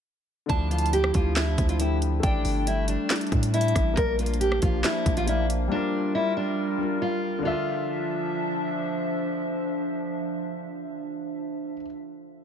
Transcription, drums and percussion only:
0.49 kick, closed hi-hat
0.71 closed hi-hat
0.78 closed hi-hat
0.86 closed hi-hat
0.93 closed hi-hat
1.04 cross-stick
1.14 kick, closed hi-hat
1.36 snare, clap, closed hi-hat
1.58 kick, closed hi-hat
1.69 closed hi-hat
1.80 closed hi-hat
2.02 closed hi-hat
2.23 kick, closed hi-hat
2.45 open hi-hat
2.67 closed hi-hat
2.88 closed hi-hat
3.10 snare, clap, closed hi-hat
3.16 closed hi-hat
3.21 closed hi-hat
3.27 closed hi-hat
3.32 kick, closed hi-hat
3.43 closed hi-hat
3.54 closed hi-hat
3.61 closed hi-hat
3.68 closed hi-hat
3.75 kick, cross-stick, closed hi-hat
3.97 kick, closed hi-hat
4.19 closed hi-hat
4.26 closed hi-hat
4.34 closed hi-hat
4.41 closed hi-hat
4.52 cross-stick
4.62 kick, closed hi-hat
4.84 snare, clap, closed hi-hat
5.06 kick, closed hi-hat
5.17 closed hi-hat
5.28 closed hi-hat
5.50 closed hi-hat

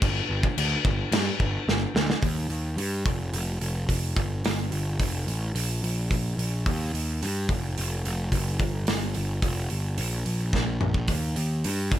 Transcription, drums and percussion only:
0.02 kick, crash
0.43 kick
0.58 crash
0.85 kick
1.12 snare, crash
1.40 kick
1.69 snare
1.96 snare
2.10 snare
2.23 kick, open hi-hat
2.50 open hi-hat
2.78 open hi-hat
3.06 kick, open hi-hat
3.33 open hi-hat
3.61 open hi-hat
3.89 kick, open hi-hat
4.17 kick, open hi-hat
4.44 snare, open hi-hat
4.72 open hi-hat
5.00 kick, open hi-hat
5.28 open hi-hat
5.56 open hi-hat
5.84 open hi-hat
6.11 kick, open hi-hat
6.39 open hi-hat
6.66 kick, open hi-hat
6.95 open hi-hat
7.22 open hi-hat
7.49 kick, open hi-hat
7.78 open hi-hat
8.05 open hi-hat
8.32 kick, open hi-hat
8.60 kick, open hi-hat
8.87 snare, open hi-hat
9.14 open hi-hat
9.42 kick, open hi-hat
9.70 open hi-hat
9.98 open hi-hat
10.26 open hi-hat
10.53 kick, snare
10.81 mid tom
10.94 kick
11.08 kick, open hi-hat
11.36 open hi-hat
11.64 open hi-hat
11.92 kick, open hi-hat

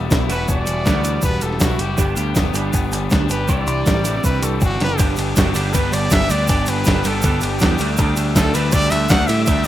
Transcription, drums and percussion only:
0.11 kick, snare, shaker
0.30 closed hi-hat, shaker
0.48 kick, shaker
0.66 closed hi-hat, shaker
0.86 kick, snare, shaker
1.04 closed hi-hat, shaker
1.22 kick, shaker
1.41 closed hi-hat, shaker
1.52 snare
1.60 kick, snare, shaker
1.79 closed hi-hat
1.98 kick, shaker
2.16 closed hi-hat, shaker
2.35 kick, snare, shaker
2.54 closed hi-hat, shaker
2.73 kick, shaker
2.92 closed hi-hat, shaker
3.10 kick, snare, shaker
3.29 closed hi-hat, shaker
3.48 kick, shaker
3.67 closed hi-hat, shaker
3.86 kick, snare, shaker
4.05 closed hi-hat, shaker
4.24 kick, shaker
4.43 closed hi-hat, shaker
4.61 kick, shaker
4.80 snare, closed hi-hat
4.98 kick, ride, shaker
5.16 ride, shaker
5.36 kick, snare, ride, shaker
5.54 ride, shaker
5.73 kick, ride, shaker
5.92 ride, shaker
6.10 kick, snare, ride, shaker
6.29 ride, shaker
6.47 kick, ride, shaker
6.66 ride, shaker
6.85 kick, snare, ride, shaker
7.04 ride, shaker
7.22 kick, ride, shaker
7.41 ride, shaker
7.59 kick, snare, ride, shaker
7.78 ride, shaker
7.97 kick, ride, shaker
8.16 ride, shaker
8.36 kick, snare, ride, shaker
8.54 ride, shaker
8.72 kick, ride, shaker
8.90 ride, shaker
9.09 kick, snare, ride, shaker
9.28 ride, shaker
9.46 kick, ride, shaker
9.64 shaker

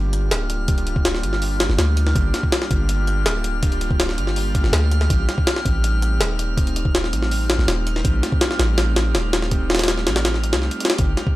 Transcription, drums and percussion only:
0.13 closed hi-hat
0.31 snare, closed hi-hat
0.50 closed hi-hat
0.68 kick, closed hi-hat
0.78 closed hi-hat
0.87 closed hi-hat
0.96 kick
1.05 snare, closed hi-hat
1.15 snare
1.23 closed hi-hat
1.33 snare
1.42 open hi-hat
1.60 snare, closed hi-hat
1.70 snare
1.79 snare, closed hi-hat
1.97 closed hi-hat
2.07 snare
2.15 kick, closed hi-hat
2.34 snare, closed hi-hat
2.43 kick
2.52 snare, closed hi-hat
2.62 snare
2.71 kick, closed hi-hat
2.89 closed hi-hat
3.07 closed hi-hat
3.26 snare, closed hi-hat
3.44 closed hi-hat
3.63 kick, closed hi-hat
3.72 closed hi-hat
3.81 closed hi-hat
3.91 kick
4.00 snare, closed hi-hat
4.09 snare
4.18 closed hi-hat
4.27 snare
4.36 open hi-hat
4.55 kick, closed hi-hat
4.64 snare
4.73 snare, closed hi-hat
4.92 closed hi-hat
5.01 snare
5.10 kick, closed hi-hat
5.29 snare, closed hi-hat
5.38 kick
5.47 snare, closed hi-hat
5.56 snare
5.65 kick, closed hi-hat
5.84 closed hi-hat
6.02 closed hi-hat
6.21 snare, closed hi-hat
6.39 closed hi-hat
6.57 kick, closed hi-hat
6.67 closed hi-hat
6.76 closed hi-hat
6.85 kick
6.95 snare, closed hi-hat
7.04 snare
7.13 closed hi-hat
7.22 snare
7.31 open hi-hat
7.50 snare, closed hi-hat
7.59 snare
7.68 snare, closed hi-hat
7.87 closed hi-hat
7.96 snare
8.05 kick, closed hi-hat
8.23 snare, closed hi-hat
8.32 kick
8.41 snare, closed hi-hat
8.51 snare
8.59 snare, closed hi-hat
8.78 snare, closed hi-hat
8.96 snare, closed hi-hat
9.15 snare, closed hi-hat
9.33 snare, closed hi-hat
9.42 snare
9.51 kick, closed hi-hat
9.70 snare, closed hi-hat
9.75 snare, closed hi-hat
9.79 snare, closed hi-hat
9.84 snare, closed hi-hat
9.88 snare, closed hi-hat
9.98 snare
10.07 snare, closed hi-hat
10.16 snare, closed hi-hat
10.25 snare, closed hi-hat
10.34 snare
10.44 closed hi-hat
10.53 snare, closed hi-hat
10.62 snare
10.71 closed hi-hat
10.80 closed hi-hat
10.85 snare, closed hi-hat
10.90 snare, closed hi-hat
10.98 kick, closed hi-hat
11.17 snare, closed hi-hat
11.27 kick

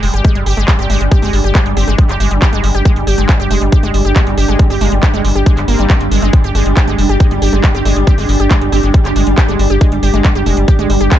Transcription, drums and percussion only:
0.03 open hi-hat
0.14 closed hi-hat
0.25 kick, closed hi-hat
0.35 closed hi-hat
0.46 open hi-hat
0.57 closed hi-hat
0.68 kick, clap, closed hi-hat
0.79 closed hi-hat
0.90 open hi-hat
1.01 closed hi-hat
1.12 kick, closed hi-hat
1.22 open hi-hat
1.33 open hi-hat
1.44 closed hi-hat
1.55 kick, clap, closed hi-hat
1.66 closed hi-hat
1.77 open hi-hat
1.88 closed hi-hat
1.98 kick, closed hi-hat
2.09 clap, closed hi-hat
2.20 open hi-hat
2.31 closed hi-hat
2.42 kick, clap, closed hi-hat
2.53 closed hi-hat
2.64 open hi-hat
2.75 closed hi-hat
2.85 kick, closed hi-hat
2.96 closed hi-hat
3.07 open hi-hat
3.18 closed hi-hat
3.29 kick, clap, closed hi-hat
3.40 closed hi-hat
3.51 open hi-hat
3.61 closed hi-hat
3.72 kick, closed hi-hat
3.83 closed hi-hat
3.94 open hi-hat
4.05 closed hi-hat
4.16 kick, clap, closed hi-hat
4.27 closed hi-hat
4.38 open hi-hat
4.48 closed hi-hat
4.59 kick, closed hi-hat
4.70 open hi-hat
4.81 open hi-hat
4.92 closed hi-hat
5.03 kick, clap, closed hi-hat
5.14 closed hi-hat
5.25 open hi-hat
5.35 closed hi-hat
5.46 kick, closed hi-hat
5.57 clap, closed hi-hat
5.68 open hi-hat
5.79 closed hi-hat
5.90 kick, clap, closed hi-hat
6.01 closed hi-hat
6.11 open hi-hat
6.22 closed hi-hat
6.33 kick, closed hi-hat
6.44 closed hi-hat
6.55 open hi-hat
6.66 closed hi-hat
6.77 kick, clap, closed hi-hat
6.88 closed hi-hat
6.98 open hi-hat
7.09 closed hi-hat
7.20 kick, closed hi-hat
7.31 closed hi-hat
7.42 open hi-hat
7.53 closed hi-hat
7.64 kick, clap, closed hi-hat
7.75 closed hi-hat
7.85 open hi-hat
7.96 closed hi-hat
8.07 kick, closed hi-hat
8.18 open hi-hat
8.29 open hi-hat
8.40 closed hi-hat
8.51 kick, clap, closed hi-hat
8.62 closed hi-hat
8.72 open hi-hat
8.83 closed hi-hat
8.94 kick, closed hi-hat
9.05 clap, closed hi-hat
9.16 open hi-hat
9.27 closed hi-hat
9.38 kick, clap, closed hi-hat
9.48 closed hi-hat
9.59 open hi-hat
9.70 closed hi-hat
9.81 kick, closed hi-hat
9.92 closed hi-hat
10.03 open hi-hat
10.14 closed hi-hat
10.25 kick, clap, closed hi-hat
10.35 closed hi-hat
10.46 open hi-hat
10.57 closed hi-hat
10.68 kick, closed hi-hat
10.79 closed hi-hat
10.90 open hi-hat
11.01 closed hi-hat
11.11 kick, clap, closed hi-hat

